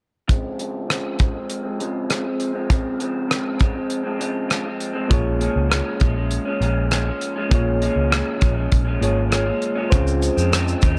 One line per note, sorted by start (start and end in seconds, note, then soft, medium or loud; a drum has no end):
0.28 0.56 C#3 medium
0.28 0.58 F3 medium
0.28 0.59 G#3 medium
0.28 0.60 C4 medium
0.28 kick loud
0.28 closed hi-hat medium
0.57 0.87 C#3 medium
0.57 0.88 F3 medium
0.57 0.88 G#3 medium
0.57 0.89 C4 medium
0.57 closed hi-hat soft
0.88 1.17 C#3 medium
0.88 1.18 F3 medium
0.88 1.19 G#3 medium
0.88 1.20 C4 medium
0.88 cross-stick medium
0.88 closed hi-hat medium
1.18 1.34 C#3 medium
1.18 1.35 F3 medium
1.18 1.34 G#3 medium
1.18 1.32 C4 medium
1.18 kick medium
1.18 closed hi-hat soft
1.33 1.66 F3 soft
1.33 1.64 G#3 soft
1.33 1.62 C4 medium
1.50 closed hi-hat medium
1.63 1.80 G#3 soft
1.63 1.79 C4 medium
1.67 1.78 F3 soft
1.78 2.08 C#3 medium
1.78 2.09 F3 medium
1.78 2.09 G#3 medium
1.78 2.10 C4 medium
1.78 closed hi-hat soft
2.09 2.24 C#3 medium
2.09 2.25 F3 medium
2.09 2.24 G#3 medium
2.09 2.23 C4 medium
2.09 cross-stick medium
2.09 closed hi-hat medium
2.24 2.56 F3 soft
2.24 2.54 G#3 soft
2.24 2.52 C4 soft
2.40 closed hi-hat soft
2.53 2.69 F3 soft
2.53 2.69 G#3 soft
2.53 2.69 C4 medium
2.69 2.97 C#3 medium
2.69 2.99 F3 medium
2.69 2.99 G#3 medium
2.69 3.01 C4 medium
2.69 kick loud
2.69 closed hi-hat medium
2.98 3.27 C#3 medium
2.98 3.28 F3 medium
2.98 3.29 G#3 medium
2.98 3.29 C4 medium
2.98 closed hi-hat soft
3.28 3.57 C#3 medium
3.28 3.58 F3 medium
3.28 3.59 G#3 medium
3.28 3.60 C4 medium
3.28 cross-stick medium
3.28 closed hi-hat medium
3.58 3.74 C#3 medium
3.58 3.75 F3 medium
3.58 3.73 G#3 medium
3.58 3.72 C4 medium
3.58 kick medium
3.58 closed hi-hat soft
3.73 4.06 F3 soft
3.73 4.04 G#3 soft
3.73 4.02 C4 soft
3.90 closed hi-hat medium
4.04 4.18 F3 soft
4.04 4.19 G#3 medium
4.04 4.20 C4 medium
4.18 4.47 C#3 medium
4.18 4.48 F3 medium
4.18 4.49 G#3 medium
4.18 4.49 C4 medium
4.18 closed hi-hat soft
4.48 4.64 C#3 medium
4.48 4.65 F3 medium
4.48 4.64 G#3 medium
4.48 4.62 C4 medium
4.48 cross-stick medium
4.48 closed hi-hat medium
4.63 4.96 F3 soft
4.63 4.94 G#3 soft
4.63 4.92 C4 soft
4.80 closed hi-hat soft
4.93 5.09 F3 soft
4.93 5.10 G#3 medium
4.93 5.10 C4 medium
5.08 5.47 A#1 medium
5.08 5.38 A#2 medium
5.08 5.39 F3 medium
5.08 5.40 G#3 medium
5.08 7.46 A#3 medium
5.08 5.41 C#4 medium
5.08 7.47 F4 medium
5.08 7.48 G#4 medium
5.08 kick loud
5.08 closed hi-hat medium
5.13 7.49 C#5 medium
5.39 5.68 A#2 medium
5.39 5.69 F3 medium
5.39 5.70 G#3 medium
5.39 5.71 C#4 medium
5.39 closed hi-hat medium
5.56 5.80 C#2 medium
5.69 5.98 A#2 medium
5.69 6.00 F3 medium
5.69 6.01 G#3 medium
5.69 6.02 C#4 medium
5.69 cross-stick medium
5.69 closed hi-hat medium
6.00 6.37 A#1 medium
6.00 6.15 A#2 medium
6.00 6.16 F3 medium
6.00 6.16 G#3 medium
6.00 6.14 C#4 medium
6.00 kick medium
6.00 closed hi-hat soft
6.16 6.48 F3 soft
6.16 6.46 G#3 soft
6.16 6.44 C#4 soft
6.31 closed hi-hat medium
6.45 6.60 F3 soft
6.45 6.62 G#3 medium
6.45 6.61 C#4 medium
6.60 7.09 A#1 medium
6.60 6.90 A#2 medium
6.60 6.90 F3 medium
6.60 6.91 G#3 medium
6.60 6.92 C#4 medium
6.60 closed hi-hat soft
6.91 7.06 A#2 medium
6.91 7.06 F3 medium
6.91 7.06 G#3 medium
6.91 7.04 C#4 loud
6.91 cross-stick medium
6.91 closed hi-hat medium
7.05 7.38 F3 soft
7.05 7.36 G#3 soft
7.05 7.35 C#4 medium
7.21 closed hi-hat soft
7.36 7.50 F3 soft
7.36 7.51 G#3 soft
7.36 7.51 C#4 medium
7.49 7.87 A#1 loud
7.49 7.79 A#2 medium
7.49 7.81 F3 medium
7.49 7.82 G#3 medium
7.49 8.98 A#3 medium
7.49 7.82 C#4 medium
7.49 8.99 F4 medium
7.49 9.00 G#4 medium
7.49 kick loud
7.49 closed hi-hat medium
7.55 9.01 C#5 medium
7.80 8.09 A#2 medium
7.80 8.10 F3 medium
7.80 8.11 G#3 medium
7.80 8.12 C#4 medium
7.80 closed hi-hat medium
7.96 8.20 C#2 medium
8.10 8.38 A#2 medium
8.10 8.40 F3 medium
8.10 8.41 G#3 medium
8.10 8.42 C#4 medium
8.10 cross-stick loud
8.10 closed hi-hat medium
8.39 8.66 A#1 medium
8.39 8.56 A#2 medium
8.39 8.56 F3 medium
8.39 8.56 G#3 medium
8.39 8.54 C#4 medium
8.39 kick medium
8.39 closed hi-hat medium
8.55 8.87 F3 soft
8.55 8.86 G#3 soft
8.55 8.84 C#4 medium
8.72 8.96 A#1 medium
8.72 kick medium
8.72 closed hi-hat medium
8.85 9.00 F3 soft
8.85 9.01 G#3 soft
8.85 9.01 C#4 medium
9.00 9.50 G#1 medium
9.00 9.29 A#2 medium
9.00 9.30 F3 medium
9.00 9.31 G#3 medium
9.00 9.92 A#3 soft
9.00 9.31 C#4 medium
9.00 9.90 F4 soft
9.00 9.92 G#4 soft
9.00 9.93 C#5 medium
9.00 closed hi-hat soft
9.30 9.46 A#2 medium
9.30 9.47 F3 medium
9.30 9.46 G#3 medium
9.30 9.44 C#4 medium
9.30 cross-stick medium
9.30 closed hi-hat medium
9.45 9.77 F3 soft
9.45 9.76 G#3 soft
9.45 9.74 C#4 medium
9.62 closed hi-hat soft
9.75 9.91 F3 soft
9.75 9.92 G#3 soft
9.75 9.91 C#4 medium
9.90 10.28 C#2 medium
9.90 10.37 C#3 medium
9.90 10.37 F3 medium
9.90 10.37 G#3 medium
9.90 10.35 C4 medium
9.90 10.99 F4 medium
9.90 10.99 G#4 medium
9.90 10.99 C5 medium
9.90 kick loud
9.90 closed hi-hat medium
9.90 shaker medium
9.95 10.99 C#4 medium
10.07 shaker soft
10.22 closed hi-hat medium
10.22 shaker medium
10.36 10.73 F2 medium
10.36 10.51 F3 soft
10.36 10.51 G#3 medium
10.36 10.52 C4 medium
10.36 shaker medium
10.51 10.80 C#3 medium
10.51 10.82 F3 medium
10.51 10.83 G#3 medium
10.51 10.83 C4 medium
10.51 cross-stick loud
10.51 closed hi-hat medium
10.51 shaker medium
10.68 shaker soft
10.81 10.99 D#2 medium
10.81 10.97 C#3 medium
10.81 10.98 F3 medium
10.81 10.97 G#3 medium
10.81 10.95 C4 medium
10.81 kick medium
10.81 closed hi-hat soft
10.81 shaker medium